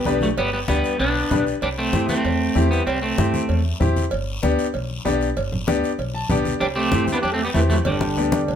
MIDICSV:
0, 0, Header, 1, 6, 480
1, 0, Start_track
1, 0, Key_signature, 1, "major"
1, 0, Tempo, 311688
1, 581, Time_signature, 4, 2, 24, 8
1, 13175, End_track
2, 0, Start_track
2, 0, Title_t, "Accordion"
2, 0, Program_c, 0, 21
2, 10169, Note_on_c, 0, 67, 88
2, 10280, Note_off_c, 0, 67, 0
2, 10393, Note_on_c, 0, 67, 88
2, 10853, Note_off_c, 0, 67, 0
2, 10966, Note_on_c, 0, 71, 85
2, 11042, Note_off_c, 0, 71, 0
2, 11107, Note_on_c, 0, 67, 80
2, 11264, Note_on_c, 0, 69, 80
2, 11272, Note_off_c, 0, 67, 0
2, 11425, Note_on_c, 0, 67, 76
2, 11430, Note_off_c, 0, 69, 0
2, 11505, Note_off_c, 0, 67, 0
2, 11599, Note_on_c, 0, 64, 73
2, 11712, Note_off_c, 0, 64, 0
2, 11845, Note_on_c, 0, 64, 75
2, 11957, Note_off_c, 0, 64, 0
2, 12087, Note_on_c, 0, 62, 70
2, 13175, Note_off_c, 0, 62, 0
2, 13175, End_track
3, 0, Start_track
3, 0, Title_t, "Upright piano"
3, 0, Program_c, 1, 0
3, 91, Note_on_c, 1, 62, 80
3, 95, Note_on_c, 1, 67, 76
3, 95, Note_on_c, 1, 71, 93
3, 432, Note_off_c, 1, 62, 0
3, 433, Note_off_c, 1, 71, 0
3, 434, Note_off_c, 1, 67, 0
3, 1050, Note_on_c, 1, 62, 66
3, 1056, Note_on_c, 1, 67, 58
3, 1061, Note_on_c, 1, 71, 69
3, 1391, Note_off_c, 1, 62, 0
3, 1394, Note_off_c, 1, 67, 0
3, 1397, Note_off_c, 1, 71, 0
3, 2013, Note_on_c, 1, 62, 69
3, 2021, Note_on_c, 1, 67, 61
3, 2025, Note_on_c, 1, 71, 76
3, 2353, Note_off_c, 1, 62, 0
3, 2357, Note_off_c, 1, 67, 0
3, 2359, Note_off_c, 1, 71, 0
3, 2971, Note_on_c, 1, 60, 65
3, 2983, Note_on_c, 1, 64, 62
3, 2988, Note_on_c, 1, 67, 69
3, 3312, Note_off_c, 1, 60, 0
3, 3318, Note_off_c, 1, 64, 0
3, 3320, Note_off_c, 1, 67, 0
3, 3925, Note_on_c, 1, 60, 78
3, 3932, Note_on_c, 1, 64, 77
3, 3936, Note_on_c, 1, 67, 91
3, 4269, Note_off_c, 1, 60, 0
3, 4272, Note_off_c, 1, 64, 0
3, 4274, Note_off_c, 1, 67, 0
3, 4888, Note_on_c, 1, 60, 62
3, 4898, Note_on_c, 1, 64, 62
3, 4903, Note_on_c, 1, 67, 72
3, 5230, Note_off_c, 1, 60, 0
3, 5235, Note_off_c, 1, 64, 0
3, 5238, Note_off_c, 1, 67, 0
3, 5850, Note_on_c, 1, 60, 77
3, 5854, Note_on_c, 1, 64, 72
3, 5860, Note_on_c, 1, 67, 86
3, 6191, Note_off_c, 1, 60, 0
3, 6193, Note_off_c, 1, 64, 0
3, 6196, Note_off_c, 1, 67, 0
3, 6813, Note_on_c, 1, 59, 83
3, 6818, Note_on_c, 1, 62, 72
3, 6828, Note_on_c, 1, 67, 90
3, 7153, Note_off_c, 1, 59, 0
3, 7155, Note_off_c, 1, 62, 0
3, 7161, Note_off_c, 1, 67, 0
3, 7774, Note_on_c, 1, 59, 83
3, 7779, Note_on_c, 1, 62, 78
3, 7783, Note_on_c, 1, 67, 90
3, 8113, Note_off_c, 1, 59, 0
3, 8116, Note_off_c, 1, 62, 0
3, 8118, Note_off_c, 1, 67, 0
3, 8732, Note_on_c, 1, 59, 79
3, 8737, Note_on_c, 1, 62, 77
3, 8745, Note_on_c, 1, 67, 86
3, 9073, Note_off_c, 1, 59, 0
3, 9075, Note_off_c, 1, 62, 0
3, 9079, Note_off_c, 1, 67, 0
3, 9463, Note_on_c, 1, 81, 73
3, 9685, Note_off_c, 1, 81, 0
3, 9699, Note_on_c, 1, 59, 81
3, 9703, Note_on_c, 1, 62, 74
3, 9706, Note_on_c, 1, 74, 69
3, 9715, Note_on_c, 1, 67, 87
3, 10036, Note_off_c, 1, 59, 0
3, 10038, Note_off_c, 1, 62, 0
3, 10045, Note_off_c, 1, 67, 0
3, 10150, Note_off_c, 1, 74, 0
3, 10669, Note_on_c, 1, 60, 63
3, 10675, Note_on_c, 1, 64, 61
3, 10681, Note_on_c, 1, 67, 71
3, 11001, Note_off_c, 1, 60, 0
3, 11004, Note_off_c, 1, 64, 0
3, 11008, Note_off_c, 1, 67, 0
3, 11623, Note_on_c, 1, 60, 69
3, 11629, Note_on_c, 1, 64, 62
3, 11636, Note_on_c, 1, 67, 76
3, 11958, Note_off_c, 1, 60, 0
3, 11961, Note_off_c, 1, 64, 0
3, 11965, Note_off_c, 1, 67, 0
3, 12577, Note_on_c, 1, 59, 65
3, 12587, Note_on_c, 1, 62, 62
3, 12588, Note_on_c, 1, 67, 71
3, 12916, Note_off_c, 1, 59, 0
3, 12920, Note_off_c, 1, 62, 0
3, 12921, Note_off_c, 1, 67, 0
3, 13175, End_track
4, 0, Start_track
4, 0, Title_t, "Clean electric guitar"
4, 0, Program_c, 2, 27
4, 0, Note_on_c, 2, 55, 74
4, 0, Note_on_c, 2, 59, 92
4, 287, Note_off_c, 2, 59, 0
4, 288, Note_off_c, 2, 55, 0
4, 347, Note_on_c, 2, 54, 65
4, 351, Note_on_c, 2, 57, 86
4, 422, Note_off_c, 2, 57, 0
4, 426, Note_off_c, 2, 54, 0
4, 589, Note_on_c, 2, 59, 96
4, 596, Note_on_c, 2, 55, 77
4, 801, Note_off_c, 2, 59, 0
4, 803, Note_off_c, 2, 55, 0
4, 818, Note_on_c, 2, 55, 70
4, 824, Note_on_c, 2, 59, 90
4, 896, Note_off_c, 2, 59, 0
4, 898, Note_off_c, 2, 55, 0
4, 1050, Note_on_c, 2, 59, 94
4, 1068, Note_on_c, 2, 55, 74
4, 1511, Note_off_c, 2, 55, 0
4, 1527, Note_off_c, 2, 59, 0
4, 1531, Note_on_c, 2, 62, 96
4, 1546, Note_on_c, 2, 59, 71
4, 2205, Note_off_c, 2, 62, 0
4, 2213, Note_off_c, 2, 59, 0
4, 2507, Note_on_c, 2, 62, 102
4, 2510, Note_on_c, 2, 55, 83
4, 2583, Note_off_c, 2, 62, 0
4, 2587, Note_off_c, 2, 55, 0
4, 2746, Note_on_c, 2, 60, 95
4, 2754, Note_on_c, 2, 57, 72
4, 3190, Note_off_c, 2, 60, 0
4, 3194, Note_off_c, 2, 57, 0
4, 3222, Note_on_c, 2, 60, 92
4, 3232, Note_on_c, 2, 57, 74
4, 4120, Note_off_c, 2, 60, 0
4, 4124, Note_off_c, 2, 57, 0
4, 4171, Note_on_c, 2, 59, 80
4, 4193, Note_on_c, 2, 55, 66
4, 4399, Note_off_c, 2, 59, 0
4, 4410, Note_off_c, 2, 55, 0
4, 4414, Note_on_c, 2, 60, 93
4, 4428, Note_on_c, 2, 55, 71
4, 4634, Note_off_c, 2, 60, 0
4, 4648, Note_off_c, 2, 55, 0
4, 4653, Note_on_c, 2, 60, 83
4, 4667, Note_on_c, 2, 57, 65
4, 5555, Note_off_c, 2, 60, 0
4, 5562, Note_off_c, 2, 57, 0
4, 10170, Note_on_c, 2, 62, 105
4, 10188, Note_on_c, 2, 55, 81
4, 10247, Note_off_c, 2, 62, 0
4, 10265, Note_off_c, 2, 55, 0
4, 10404, Note_on_c, 2, 60, 100
4, 10425, Note_on_c, 2, 57, 80
4, 10859, Note_off_c, 2, 60, 0
4, 10870, Note_off_c, 2, 57, 0
4, 10972, Note_on_c, 2, 62, 93
4, 10993, Note_on_c, 2, 59, 74
4, 11046, Note_off_c, 2, 62, 0
4, 11062, Note_off_c, 2, 59, 0
4, 11131, Note_on_c, 2, 62, 96
4, 11153, Note_on_c, 2, 55, 78
4, 11285, Note_off_c, 2, 62, 0
4, 11297, Note_off_c, 2, 55, 0
4, 11299, Note_on_c, 2, 60, 88
4, 11320, Note_on_c, 2, 57, 65
4, 11460, Note_off_c, 2, 57, 0
4, 11460, Note_off_c, 2, 60, 0
4, 11467, Note_on_c, 2, 59, 82
4, 11496, Note_on_c, 2, 55, 62
4, 11538, Note_off_c, 2, 59, 0
4, 11560, Note_off_c, 2, 55, 0
4, 11615, Note_on_c, 2, 57, 85
4, 11648, Note_on_c, 2, 52, 65
4, 11692, Note_off_c, 2, 57, 0
4, 11725, Note_off_c, 2, 52, 0
4, 11854, Note_on_c, 2, 57, 88
4, 11890, Note_on_c, 2, 54, 65
4, 11931, Note_off_c, 2, 57, 0
4, 11967, Note_off_c, 2, 54, 0
4, 12114, Note_on_c, 2, 55, 82
4, 12146, Note_on_c, 2, 50, 62
4, 13175, Note_off_c, 2, 50, 0
4, 13175, Note_off_c, 2, 55, 0
4, 13175, End_track
5, 0, Start_track
5, 0, Title_t, "Upright bass"
5, 0, Program_c, 3, 32
5, 98, Note_on_c, 3, 35, 93
5, 483, Note_off_c, 3, 35, 0
5, 578, Note_on_c, 3, 31, 89
5, 963, Note_off_c, 3, 31, 0
5, 1063, Note_on_c, 3, 38, 94
5, 1254, Note_off_c, 3, 38, 0
5, 1535, Note_on_c, 3, 35, 83
5, 1921, Note_off_c, 3, 35, 0
5, 2014, Note_on_c, 3, 35, 94
5, 2401, Note_off_c, 3, 35, 0
5, 2495, Note_on_c, 3, 36, 91
5, 2881, Note_off_c, 3, 36, 0
5, 2971, Note_on_c, 3, 43, 93
5, 3167, Note_off_c, 3, 43, 0
5, 3457, Note_on_c, 3, 40, 89
5, 3843, Note_off_c, 3, 40, 0
5, 3935, Note_on_c, 3, 40, 100
5, 4321, Note_off_c, 3, 40, 0
5, 4409, Note_on_c, 3, 36, 88
5, 4797, Note_off_c, 3, 36, 0
5, 4898, Note_on_c, 3, 43, 93
5, 5091, Note_off_c, 3, 43, 0
5, 5374, Note_on_c, 3, 40, 89
5, 5761, Note_off_c, 3, 40, 0
5, 5857, Note_on_c, 3, 40, 90
5, 6243, Note_off_c, 3, 40, 0
5, 6341, Note_on_c, 3, 31, 86
5, 6725, Note_off_c, 3, 31, 0
5, 6823, Note_on_c, 3, 38, 89
5, 7014, Note_off_c, 3, 38, 0
5, 7310, Note_on_c, 3, 35, 88
5, 7690, Note_off_c, 3, 35, 0
5, 7790, Note_on_c, 3, 35, 96
5, 8170, Note_off_c, 3, 35, 0
5, 8270, Note_on_c, 3, 31, 87
5, 8651, Note_off_c, 3, 31, 0
5, 8744, Note_on_c, 3, 38, 96
5, 8935, Note_off_c, 3, 38, 0
5, 9218, Note_on_c, 3, 35, 89
5, 9604, Note_off_c, 3, 35, 0
5, 9706, Note_on_c, 3, 35, 93
5, 10088, Note_off_c, 3, 35, 0
5, 10183, Note_on_c, 3, 36, 90
5, 10566, Note_off_c, 3, 36, 0
5, 10666, Note_on_c, 3, 43, 93
5, 10856, Note_off_c, 3, 43, 0
5, 11145, Note_on_c, 3, 40, 88
5, 11528, Note_off_c, 3, 40, 0
5, 11625, Note_on_c, 3, 40, 89
5, 12008, Note_off_c, 3, 40, 0
5, 12097, Note_on_c, 3, 31, 91
5, 12483, Note_off_c, 3, 31, 0
5, 12585, Note_on_c, 3, 38, 93
5, 12776, Note_off_c, 3, 38, 0
5, 13065, Note_on_c, 3, 35, 89
5, 13175, Note_off_c, 3, 35, 0
5, 13175, End_track
6, 0, Start_track
6, 0, Title_t, "Drums"
6, 81, Note_on_c, 9, 63, 84
6, 97, Note_on_c, 9, 66, 72
6, 100, Note_on_c, 9, 73, 66
6, 235, Note_off_c, 9, 63, 0
6, 251, Note_off_c, 9, 66, 0
6, 254, Note_off_c, 9, 73, 0
6, 320, Note_on_c, 9, 63, 67
6, 338, Note_on_c, 9, 73, 71
6, 474, Note_off_c, 9, 63, 0
6, 492, Note_off_c, 9, 73, 0
6, 578, Note_on_c, 9, 56, 106
6, 583, Note_on_c, 9, 74, 65
6, 732, Note_off_c, 9, 56, 0
6, 737, Note_off_c, 9, 74, 0
6, 1048, Note_on_c, 9, 63, 95
6, 1064, Note_on_c, 9, 73, 68
6, 1202, Note_off_c, 9, 63, 0
6, 1218, Note_off_c, 9, 73, 0
6, 1296, Note_on_c, 9, 73, 71
6, 1450, Note_off_c, 9, 73, 0
6, 1536, Note_on_c, 9, 74, 68
6, 1542, Note_on_c, 9, 63, 33
6, 1547, Note_on_c, 9, 56, 78
6, 1690, Note_off_c, 9, 74, 0
6, 1696, Note_off_c, 9, 63, 0
6, 1701, Note_off_c, 9, 56, 0
6, 1780, Note_on_c, 9, 63, 36
6, 1934, Note_off_c, 9, 63, 0
6, 2011, Note_on_c, 9, 73, 66
6, 2021, Note_on_c, 9, 63, 87
6, 2021, Note_on_c, 9, 64, 84
6, 2023, Note_on_c, 9, 66, 69
6, 2165, Note_off_c, 9, 73, 0
6, 2175, Note_off_c, 9, 63, 0
6, 2175, Note_off_c, 9, 64, 0
6, 2177, Note_off_c, 9, 66, 0
6, 2259, Note_on_c, 9, 73, 67
6, 2413, Note_off_c, 9, 73, 0
6, 2496, Note_on_c, 9, 74, 69
6, 2497, Note_on_c, 9, 56, 100
6, 2650, Note_off_c, 9, 74, 0
6, 2651, Note_off_c, 9, 56, 0
6, 2974, Note_on_c, 9, 63, 95
6, 2978, Note_on_c, 9, 73, 68
6, 3128, Note_off_c, 9, 63, 0
6, 3132, Note_off_c, 9, 73, 0
6, 3212, Note_on_c, 9, 63, 68
6, 3219, Note_on_c, 9, 73, 72
6, 3366, Note_off_c, 9, 63, 0
6, 3373, Note_off_c, 9, 73, 0
6, 3459, Note_on_c, 9, 74, 70
6, 3461, Note_on_c, 9, 63, 37
6, 3463, Note_on_c, 9, 56, 80
6, 3613, Note_off_c, 9, 74, 0
6, 3615, Note_off_c, 9, 63, 0
6, 3617, Note_off_c, 9, 56, 0
6, 3699, Note_on_c, 9, 63, 34
6, 3853, Note_off_c, 9, 63, 0
6, 3939, Note_on_c, 9, 63, 81
6, 3943, Note_on_c, 9, 73, 72
6, 4093, Note_off_c, 9, 63, 0
6, 4097, Note_off_c, 9, 73, 0
6, 4184, Note_on_c, 9, 73, 69
6, 4338, Note_off_c, 9, 73, 0
6, 4421, Note_on_c, 9, 56, 99
6, 4427, Note_on_c, 9, 74, 66
6, 4575, Note_off_c, 9, 56, 0
6, 4581, Note_off_c, 9, 74, 0
6, 4900, Note_on_c, 9, 63, 102
6, 4904, Note_on_c, 9, 73, 69
6, 5054, Note_off_c, 9, 63, 0
6, 5058, Note_off_c, 9, 73, 0
6, 5139, Note_on_c, 9, 63, 73
6, 5143, Note_on_c, 9, 73, 68
6, 5293, Note_off_c, 9, 63, 0
6, 5297, Note_off_c, 9, 73, 0
6, 5373, Note_on_c, 9, 56, 82
6, 5385, Note_on_c, 9, 74, 69
6, 5386, Note_on_c, 9, 63, 34
6, 5527, Note_off_c, 9, 56, 0
6, 5539, Note_off_c, 9, 74, 0
6, 5540, Note_off_c, 9, 63, 0
6, 5629, Note_on_c, 9, 63, 33
6, 5783, Note_off_c, 9, 63, 0
6, 5860, Note_on_c, 9, 73, 69
6, 5863, Note_on_c, 9, 63, 82
6, 5863, Note_on_c, 9, 64, 88
6, 6014, Note_off_c, 9, 73, 0
6, 6017, Note_off_c, 9, 63, 0
6, 6017, Note_off_c, 9, 64, 0
6, 6104, Note_on_c, 9, 63, 64
6, 6108, Note_on_c, 9, 73, 64
6, 6258, Note_off_c, 9, 63, 0
6, 6262, Note_off_c, 9, 73, 0
6, 6330, Note_on_c, 9, 56, 104
6, 6343, Note_on_c, 9, 74, 72
6, 6484, Note_off_c, 9, 56, 0
6, 6497, Note_off_c, 9, 74, 0
6, 6821, Note_on_c, 9, 73, 66
6, 6824, Note_on_c, 9, 63, 91
6, 6975, Note_off_c, 9, 73, 0
6, 6978, Note_off_c, 9, 63, 0
6, 7065, Note_on_c, 9, 73, 67
6, 7219, Note_off_c, 9, 73, 0
6, 7297, Note_on_c, 9, 56, 80
6, 7300, Note_on_c, 9, 63, 36
6, 7309, Note_on_c, 9, 74, 65
6, 7451, Note_off_c, 9, 56, 0
6, 7454, Note_off_c, 9, 63, 0
6, 7463, Note_off_c, 9, 74, 0
6, 7548, Note_on_c, 9, 63, 34
6, 7702, Note_off_c, 9, 63, 0
6, 7782, Note_on_c, 9, 66, 70
6, 7784, Note_on_c, 9, 63, 82
6, 7786, Note_on_c, 9, 73, 71
6, 7936, Note_off_c, 9, 66, 0
6, 7938, Note_off_c, 9, 63, 0
6, 7940, Note_off_c, 9, 73, 0
6, 8024, Note_on_c, 9, 73, 69
6, 8178, Note_off_c, 9, 73, 0
6, 8264, Note_on_c, 9, 74, 70
6, 8268, Note_on_c, 9, 56, 101
6, 8418, Note_off_c, 9, 74, 0
6, 8422, Note_off_c, 9, 56, 0
6, 8505, Note_on_c, 9, 64, 70
6, 8659, Note_off_c, 9, 64, 0
6, 8744, Note_on_c, 9, 63, 97
6, 8747, Note_on_c, 9, 73, 71
6, 8898, Note_off_c, 9, 63, 0
6, 8901, Note_off_c, 9, 73, 0
6, 8991, Note_on_c, 9, 73, 70
6, 9145, Note_off_c, 9, 73, 0
6, 9218, Note_on_c, 9, 63, 36
6, 9224, Note_on_c, 9, 56, 77
6, 9232, Note_on_c, 9, 74, 70
6, 9372, Note_off_c, 9, 63, 0
6, 9378, Note_off_c, 9, 56, 0
6, 9386, Note_off_c, 9, 74, 0
6, 9459, Note_on_c, 9, 63, 34
6, 9613, Note_off_c, 9, 63, 0
6, 9694, Note_on_c, 9, 63, 83
6, 9694, Note_on_c, 9, 64, 80
6, 9701, Note_on_c, 9, 73, 70
6, 9848, Note_off_c, 9, 63, 0
6, 9848, Note_off_c, 9, 64, 0
6, 9855, Note_off_c, 9, 73, 0
6, 9933, Note_on_c, 9, 63, 71
6, 9941, Note_on_c, 9, 73, 65
6, 10087, Note_off_c, 9, 63, 0
6, 10095, Note_off_c, 9, 73, 0
6, 10179, Note_on_c, 9, 56, 109
6, 10181, Note_on_c, 9, 74, 70
6, 10333, Note_off_c, 9, 56, 0
6, 10335, Note_off_c, 9, 74, 0
6, 10651, Note_on_c, 9, 63, 100
6, 10661, Note_on_c, 9, 73, 70
6, 10805, Note_off_c, 9, 63, 0
6, 10815, Note_off_c, 9, 73, 0
6, 10893, Note_on_c, 9, 63, 71
6, 10902, Note_on_c, 9, 73, 71
6, 11047, Note_off_c, 9, 63, 0
6, 11056, Note_off_c, 9, 73, 0
6, 11132, Note_on_c, 9, 56, 80
6, 11139, Note_on_c, 9, 63, 35
6, 11141, Note_on_c, 9, 74, 68
6, 11286, Note_off_c, 9, 56, 0
6, 11293, Note_off_c, 9, 63, 0
6, 11295, Note_off_c, 9, 74, 0
6, 11378, Note_on_c, 9, 63, 33
6, 11532, Note_off_c, 9, 63, 0
6, 11617, Note_on_c, 9, 63, 84
6, 11622, Note_on_c, 9, 73, 68
6, 11771, Note_off_c, 9, 63, 0
6, 11776, Note_off_c, 9, 73, 0
6, 11855, Note_on_c, 9, 63, 64
6, 11867, Note_on_c, 9, 73, 68
6, 12009, Note_off_c, 9, 63, 0
6, 12021, Note_off_c, 9, 73, 0
6, 12089, Note_on_c, 9, 56, 103
6, 12093, Note_on_c, 9, 63, 85
6, 12108, Note_on_c, 9, 74, 70
6, 12243, Note_off_c, 9, 56, 0
6, 12247, Note_off_c, 9, 63, 0
6, 12262, Note_off_c, 9, 74, 0
6, 12332, Note_on_c, 9, 63, 102
6, 12486, Note_off_c, 9, 63, 0
6, 12585, Note_on_c, 9, 73, 67
6, 12739, Note_off_c, 9, 73, 0
6, 12816, Note_on_c, 9, 63, 108
6, 12819, Note_on_c, 9, 73, 72
6, 12970, Note_off_c, 9, 63, 0
6, 12973, Note_off_c, 9, 73, 0
6, 13065, Note_on_c, 9, 56, 77
6, 13066, Note_on_c, 9, 74, 70
6, 13175, Note_off_c, 9, 56, 0
6, 13175, Note_off_c, 9, 74, 0
6, 13175, End_track
0, 0, End_of_file